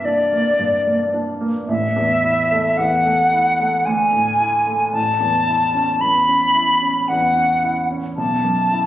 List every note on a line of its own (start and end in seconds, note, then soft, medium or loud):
0.00 1.65 C2 soft
0.00 0.59 G2 soft
0.00 0.32 A#3 soft
0.00 0.05 D4 soft
0.05 0.49 D4 soft
0.05 1.14 D5 medium
0.32 0.76 A#3 soft
0.59 1.03 G2 soft
0.87 1.30 A#3 soft
1.13 1.57 D4 soft
1.41 1.68 A#3 soft
1.68 3.82 A1 medium
1.68 2.79 E5 medium
1.96 2.40 E2 soft
2.24 2.68 E4 soft
2.51 2.95 A3 soft
2.77 3.22 E2 soft
2.77 3.87 F#5 medium
3.05 3.49 A3 soft
3.33 3.76 E4 soft
3.60 3.87 A3 soft
3.86 4.90 D2 medium
3.86 4.92 G#5 medium
4.13 4.56 A2 soft
4.39 4.82 E4 soft
4.67 4.94 A3 soft
4.93 8.13 A1 soft
4.93 6.03 A5 medium
5.20 5.63 E2 soft
5.47 5.91 E4 soft
5.74 6.18 C#4 soft
6.01 6.45 E2 soft
6.01 7.10 B5 medium
6.28 6.72 C#4 soft
6.55 6.98 E4 soft
6.82 7.25 C#4 soft
7.08 7.53 E2 soft
7.08 7.89 F#5 medium
7.36 7.79 C#4 soft
7.64 8.07 E4 soft
7.91 8.17 C#4 soft
8.17 8.86 B1 soft
8.17 8.86 A5 medium
8.44 8.86 F#2 soft
8.72 8.86 E4 soft